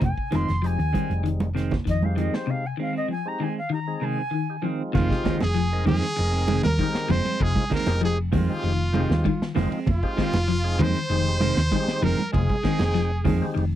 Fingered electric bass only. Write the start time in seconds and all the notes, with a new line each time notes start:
0.02 F1
0.18 muted fingered electric bass stroke
0.34 F1
0.50 F1
0.79 D#2
0.95 muted fingered electric bass stroke
1.10 F1
1.87 F2
2.34 muted fingered electric bass stroke
4.95 F1
5.25 muted fingered electric bass stroke
5.43 F1
5.87 F2
6.19 F1
6.65 D#2
6.94 muted fingered electric bass stroke
7.09 F1
7.40 F1
7.71 muted fingered electric bass stroke
7.87 F1
8.33 F2
8.63 F1
9.10 D#2
9.41 muted fingered electric bass stroke
9.55 F1
9.71 muted fingered electric bass stroke
9.87 F1
10.18 muted fingered electric bass stroke
10.33 F1
10.80 F2
11.10 F1
11.57 D#2
11.87 muted fingered electric bass stroke
12.02 F1
12.18 muted fingered electric bass stroke
12.34 F1
12.65 muted fingered electric bass stroke
12.80 F1
13.27 F2
13.56 F1